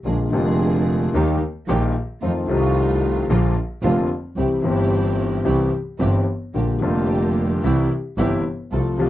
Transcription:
0.04 A#1 A#2 D3 G#3 A#3 D4 F4 G#4
0.30 F1 F2 D3 G#3 A#3 D4 G#4
0.35 F4
1.14 D#2 D#3 G3 A#3 D#4 G4
1.68 A#1 A#2 D#3 G3 A#3 D#4 G4
2.22 F2 D#3 F3 A3 C4 D#4 F4
2.47 C2 C3 D#3 A3 C4 D#4 F4
3.29 A#1 A#2 D3 F3 A#3 D4 F4
3.83 F1 F2 D3 F3 A#3 D4 F4
4.36 C2 C3 E3 G3 C4 E4 G4
4.62 G1 G2 E3 G3 C4 E4 G4
4.66 G4
5.45 C2 C3 E3 G3 C4 E4 G4
5.99 G1 G2 E3 G3 C4 E4 G4
6.54 A#1 A#2 D3 G3 A#3 D4 F4 G4
6.80 F1 F2 D3 G3 A#3 D4 F4 G4
7.63 C2 C3 E3 G3 C4 E4 G4
8.17 G1 G2 C3 E3 G3 C4 E4 G4
8.72 C2 C3 F3 A3 C4 F4 A4
8.98 C2 C3 F3 A3 C4 F4 A4

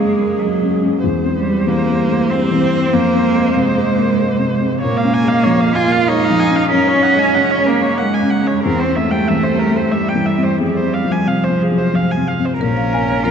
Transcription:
Already playing: F#2 C#3 G#3 C#4 G#4
0.18 A#3
0.39 F#3 G#3
0.61 C#3
0.81 C#4
1.03 E2 C5
1.25 C4
1.37 G3
1.47 G3
1.67 E3 A#3
1.89 G3
2.09 A3
2.30 G3 C4
2.51 E3
2.73 C4
2.93 F2 A#3
3.14 C4
3.34 G#3
3.54 C3 G#3
3.77 G#3
3.98 A#3
4.19 G#3
4.39 C3
4.61 C4
4.81 A#2 A#3 C#5
4.97 F5
5.04 C#4
5.14 G#5
5.24 G#3
5.28 F5
5.44 F3 C#5
5.60 F5
5.66 G#3
5.75 F4 G#5
5.87 A#3
5.92 F5
6.08 G#3 D#4 C#5
6.24 F5
6.30 F3
6.39 G#5
6.50 C#4
6.56 F5
6.71 F#2 C#4 A#4
6.88 C#5
6.94 C#4
7.03 F#5
7.15 G#3 G#5
7.34 C#3 F#5
7.51 C#5
7.59 G#3
7.66 A#3 A#4
7.79 A#3 C#5
7.98 G#3 F#5
8.14 G#5
8.22 C#3
8.30 F#5
8.44 C#4 C#5
8.63 E2 C4 A#4
8.80 C5
8.87 C4
8.96 A3 E5
9.09 G3 G5
9.28 E3 E5
9.43 C5
9.50 G3
9.59 A#4
9.71 A3
9.76 C5
9.92 G3 E5
10.09 G5
10.15 E3
10.26 E5
10.38 C4
10.44 C5
10.60 F2 G3 G#4
10.77 C5
10.82 C4
10.94 F5
11.04 F3
11.12 G#5
11.26 C3 F3 F5
11.44 C5
11.49 F3
11.62 G#4
11.72 F#3
11.78 C5
11.93 F3 F5
12.12 G#5
12.17 C3
12.28 F5
12.39 C4
12.46 C5
12.60 A#1 A#2 C#4 A#4
12.77 F5
12.93 F5 G#5
13.08 C#5
13.24 F3 C#4 F4 A#4

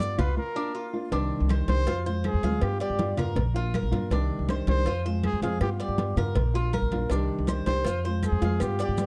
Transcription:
Already playing: G2 D5
0.00 G3 B3 F4, cowbell, high conga, maracas
0.18 C2 B3 F4 B4, cowbell, high conga, low conga, claves, maracas
0.37 A#4, muted nylon-string guitar stroke
0.55 A#3 D4 F4
0.75 F4
0.93 A#3 D4 F4
1.11 C2 C3 D#3 G3 D4 G4, cowbell, high conga
1.31 high conga
1.40 C2
1.49 D#3 G3 D4 G4 C5, cowbell, high conga, claves
1.68 C2 D#3 G3 D4 G4 C5, cowbell, high conga
1.87 F2 F4, muted nylon-string guitar stroke, cowbell, high conga
2.06 G#3 C4 F4 C5, high conga
2.24 G#4, cowbell, high conga, claves
2.34 F2
2.43 D2 F3 G#3 C4 F4 F5, cowbell, high conga
2.61 G2 G3 B3 F4 G4, cowbell, high conga, claves
2.80 G4 D5, cowbell, high conga
2.90 G2
2.99 G3 B3 F4, cowbell, high conga
3.17 G2 B3 F4 A#4, cowbell, high conga, low conga, claves
3.36 A#1, muted nylon-string guitar stroke, cowbell, high conga, low conga
3.54 A#3 D4 F4, high conga
3.74 A#4, cowbell, high conga, claves
3.83 A#1
3.91 G2 A#3 D4 F4, cowbell, high conga
4.10 C2 C3 D#3 G3 D4 G4, cowbell
4.30 high conga
4.39 C2
4.49 D#3 G3 D4 G4 C5, cowbell, high conga, claves
4.67 C2 D#3 G3 D4 G4 C5, cowbell, high conga
4.85 F2 F4, muted nylon-string guitar stroke, cowbell, high conga
5.05 G#3 C4 F4 C5, high conga
5.24 G#4, cowbell, high conga, claves
5.33 F2
5.42 F2 F3 G#3 C4 F4 G#4 F5, cowbell
5.61 G2 G3 B3 F4 G4, cowbell, high conga, claves
5.80 G4 D5, cowbell, high conga
5.89 G2
5.98 G3 B3 F4, cowbell, high conga
6.16 G2 B3 F4 A#4, cowbell, high conga, low conga, claves
6.35 A#1, muted nylon-string guitar stroke, cowbell, high conga, low conga
6.54 A#3 D4 F4, high conga
6.73 A#4, cowbell, high conga, claves
6.82 A#1
6.91 A#1 A#3 D4 F4, cowbell, high conga
7.10 C2 C3 D#3 G3 D4 G4, cowbell, maracas
7.30 high conga
7.39 C2
7.47 D#3 G3 D4 G4 C5, cowbell, high conga, claves, maracas
7.66 C2 D#3 G3 D4 G4 C5, cowbell, high conga, maracas
7.85 F2 F4, muted nylon-string guitar stroke, cowbell, high conga, maracas
8.05 G#3 C4 F4 C5, high conga
8.23 G#4, cowbell, high conga, claves, maracas
8.32 F2
8.41 F2 F3 G#3 C4 F4 F5, cowbell, high conga, maracas
8.60 G2 G3 B3 F4 G4, cowbell, high conga, claves, maracas
8.79 G4 D5, cowbell, high conga, maracas
8.88 G2
8.98 G3 B3 F4, cowbell, high conga, maracas

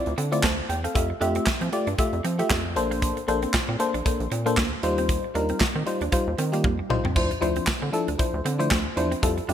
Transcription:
Already playing: C4 E4 F4 D5
0.06 D2, closed hi-hat
0.18 D3 C4, closed hi-hat
0.32 A3 C4 E4 F4 D5, closed hi-hat
0.43 D2 A3 C5 A5, kick, snare, clap
0.69 E2 G5, muted clean electric guitar stroke, closed hi-hat
0.84 C4 A4 F5, closed hi-hat
0.95 F2 A3 F4 G4 E5, kick, closed hi-hat
1.10 muted clean electric guitar stroke
1.21 F2 A3 D4 F4 G4 E5, closed hi-hat
1.35 C4, closed hi-hat
1.46 F3, kick, snare, clap
1.61 F3 C4, closed hi-hat
1.72 A3 F4 G4 D5, muted clean electric guitar stroke, closed hi-hat
1.87 G2 D4, closed hi-hat
1.98 A3 F4 G4 E5, muted clean electric guitar stroke, kick, closed hi-hat
2.13 F2, closed hi-hat
2.24 F3 C4, closed hi-hat
2.39 A3 F4 G4 E5, closed hi-hat
2.50 F2 A3, kick, snare, clap
2.65 muted clean electric guitar stroke
2.76 A#1 A#3 D4 A4 C5, closed hi-hat
2.91 A#3, closed hi-hat
3.02 kick, closed hi-hat
3.17 muted clean electric guitar stroke, closed hi-hat
3.28 A#1 A#3 D4 A4 C5, closed hi-hat
3.42 C4, closed hi-hat
3.54 A#2, kick, snare, clap
3.69 A#2 C4
3.79 A#3 D4 A4 C5, muted clean electric guitar stroke, closed hi-hat
3.94 A#1 D4, closed hi-hat
4.05 A#3 D4 A4 C5, muted clean electric guitar stroke, kick, closed hi-hat
4.20 A#1, closed hi-hat
4.31 A#2 C4, closed hi-hat
4.46 A#3 D4 A4 C5, closed hi-hat
4.57 D2 A#3, kick, snare, clap
4.83 D#2 G3 D#4 F4 C5, muted clean electric guitar stroke, closed hi-hat
4.98 C4, closed hi-hat
5.09 kick, closed hi-hat
5.24 muted clean electric guitar stroke
5.34 D#2 G3 D4 D#4 F4 A#4, closed hi-hat
5.49 C4, closed hi-hat
5.60 D#3, kick, snare, clap
5.75 D#3 C4
5.86 G3 D#4 F4 C5, muted clean electric guitar stroke, closed hi-hat
6.01 D#2 D4, closed hi-hat
6.12 G3 D#4 F4 C5, muted clean electric guitar stroke, kick, closed hi-hat
6.27 D#2
6.38 D#3 C4, closed hi-hat
6.52 G3 A#3 D#4 F4 G4, closed hi-hat
6.64 F2 A#3, kick, high tom
6.79 muted clean electric guitar stroke
6.90 C2 G3 D#4 F4 C5, mid tom
7.05 C4, floor tom
7.15 D2 F3 D4 E4 C5, kick, splash
7.31 muted clean electric guitar stroke, closed hi-hat
7.41 D2 F3 D4 E4 C5, closed hi-hat
7.56 C4, closed hi-hat
7.67 D3, kick, snare, clap
7.82 D3 C4
7.92 F3 D4 E4 A4, muted clean electric guitar stroke, closed hi-hat
8.08 D2 D4, closed hi-hat
8.18 F3 D4 E4 C5, muted clean electric guitar stroke, kick, closed hi-hat
8.34 D2
8.45 D3 C4, closed hi-hat
8.59 F3 A3 D4 E4 C5, closed hi-hat
8.71 D2 A3, kick, snare, clap
8.97 E2 F3 D4 E4 C5, muted clean electric guitar stroke, closed hi-hat
9.12 C4, closed hi-hat
9.22 F2 G3 E4 F4 A4, kick, closed hi-hat
9.38 muted clean electric guitar stroke, closed hi-hat
9.48 F2 G3 D4 E4 F4 G4, closed hi-hat

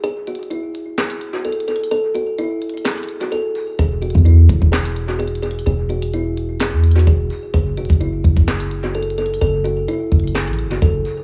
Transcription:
0.04 G#4, closed hi-hat
0.27 F#4, closed hi-hat
0.35 closed hi-hat
0.43 closed hi-hat
0.50 E4, closed hi-hat
0.75 closed hi-hat
0.98 G#4, snare, clap, closed hi-hat
1.10 closed hi-hat
1.21 closed hi-hat
1.33 F#4
1.45 A4, closed hi-hat
1.52 closed hi-hat
1.60 closed hi-hat
1.68 A4, closed hi-hat
1.76 closed hi-hat
1.84 closed hi-hat
1.91 A4, closed hi-hat
2.15 F#4, closed hi-hat
2.38 E4, closed hi-hat
2.62 closed hi-hat
2.70 closed hi-hat
2.77 closed hi-hat
2.85 G#4, snare, clap, closed hi-hat
2.91 closed hi-hat
2.98 closed hi-hat
3.03 closed hi-hat
3.09 closed hi-hat
3.21 F#4, closed hi-hat
3.32 A4, closed hi-hat
3.55 open hi-hat
3.79 E1 G#4, kick, closed hi-hat
4.02 F#4, closed hi-hat
4.10 closed hi-hat
4.15 E2, kick, closed hi-hat
4.25 E4, closed hi-hat
4.49 E1, kick, closed hi-hat
4.62 E1, kick
4.72 G#4, snare, clap, closed hi-hat
4.85 closed hi-hat
4.96 closed hi-hat
5.09 F#4
5.19 G#4, closed hi-hat
5.28 closed hi-hat
5.35 closed hi-hat
5.42 G#4, closed hi-hat
5.51 closed hi-hat
5.59 closed hi-hat
5.66 E1 G#4, closed hi-hat
5.89 F#4, closed hi-hat
6.02 closed hi-hat
6.14 E4, closed hi-hat
6.37 closed hi-hat
6.60 G#4, snare, clap, closed hi-hat
6.73 E2
6.84 closed hi-hat
6.92 closed hi-hat
6.96 F#4, closed hi-hat
7.07 E1 G#4, kick, closed hi-hat
7.30 open hi-hat
7.54 F#1 G#4, kick, closed hi-hat
7.77 E1 F#4, closed hi-hat
7.85 closed hi-hat
7.90 F#1, kick, closed hi-hat
8.01 E4, closed hi-hat
8.24 F#1, kick, closed hi-hat
8.37 F#1, kick
8.48 G#4, snare, clap, closed hi-hat
8.60 closed hi-hat
8.71 closed hi-hat
8.84 F#4
8.95 A4, closed hi-hat
9.03 closed hi-hat
9.10 closed hi-hat
9.18 A4, closed hi-hat
9.26 closed hi-hat
9.34 closed hi-hat
9.41 F#1 A4, closed hi-hat
9.64 F#4, closed hi-hat
9.88 E4, closed hi-hat
10.12 F#1, kick, closed hi-hat
10.20 closed hi-hat
10.27 closed hi-hat
10.35 G#4, snare, clap, closed hi-hat
10.41 closed hi-hat
10.48 A1, closed hi-hat
10.53 closed hi-hat
10.59 closed hi-hat
10.65 F#1
10.71 F#4, closed hi-hat
10.82 F#1 A4, kick, closed hi-hat
11.05 open hi-hat

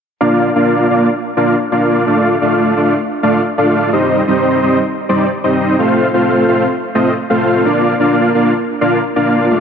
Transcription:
0.21 A#3 D4 F4 D5 F5
0.56 A#3 D4 F4 D5 F5
0.90 A#3 D4 F4 D5 F5
1.37 A#3 D4 F4 D5 F5
1.72 A#3 D4 F4 D5 F5
2.07 A3 D4 F4 D5 F5
2.41 A3 D4 F4 D5 F5
2.76 A3 D4 F4 D5 F5
3.23 A3 D4 F4 D5 F5
3.58 A3 D4 F4 D5 F5
3.93 G3 C4 D#4 C5 D#5
4.28 G3 C4 D#4 C5 D#5
4.62 G3 C4 D#4 C5 D#5
5.09 G3 C4 D#4 C5 D5
5.44 G3 C4 D#4 C5 D#5
5.79 A3 C4 F4 C5 F5
6.14 A3 C4 F4 C5 F5
6.48 A3 C4 F4 C5 F5
6.95 A3 C4 F4 C5 D#5
7.30 A3 C4 F4 C5 F5
7.65 A#3 D4 F4 D5 F5
8.00 A#3 D4 F4 D5 F5
8.35 A#3 D4 F4 D5 F5
8.81 A#3 D4 F4 D5 F5
9.16 A#3 D4 F4 D5 F5
9.51 A3 D4 F4 D5 F5

